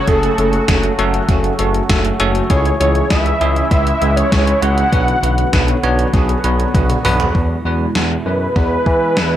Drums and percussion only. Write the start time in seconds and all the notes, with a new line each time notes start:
0.07 kick, closed hi-hat
0.23 closed hi-hat
0.38 closed hi-hat
0.53 closed hi-hat
0.68 kick, snare, closed hi-hat
0.83 closed hi-hat
0.99 closed hi-hat
1.14 closed hi-hat
1.29 kick, closed hi-hat
1.44 closed hi-hat
1.59 closed hi-hat
1.75 closed hi-hat
1.90 kick, snare, closed hi-hat
2.05 closed hi-hat
2.20 closed hi-hat
2.35 closed hi-hat
2.50 kick, closed hi-hat
2.65 closed hi-hat
2.81 closed hi-hat
2.95 closed hi-hat
3.10 kick, snare, closed hi-hat
3.26 closed hi-hat
3.41 closed hi-hat
3.56 closed hi-hat
3.71 kick, closed hi-hat
3.87 closed hi-hat
4.02 closed hi-hat
4.17 closed hi-hat
4.32 kick, snare, closed hi-hat
4.47 closed hi-hat
4.62 closed hi-hat
4.78 closed hi-hat
4.93 kick, closed hi-hat
5.08 closed hi-hat
5.24 closed hi-hat
5.38 closed hi-hat
5.53 kick, snare, closed hi-hat
5.68 closed hi-hat
5.83 closed hi-hat
5.99 closed hi-hat
6.14 kick, closed hi-hat
6.29 closed hi-hat
6.44 closed hi-hat
6.60 closed hi-hat
6.74 kick, closed hi-hat, high tom
6.90 closed hi-hat, mid tom
7.05 mid tom, open hi-hat
7.20 closed hi-hat, floor tom
7.35 kick
7.95 snare
8.56 kick
8.86 kick
9.17 snare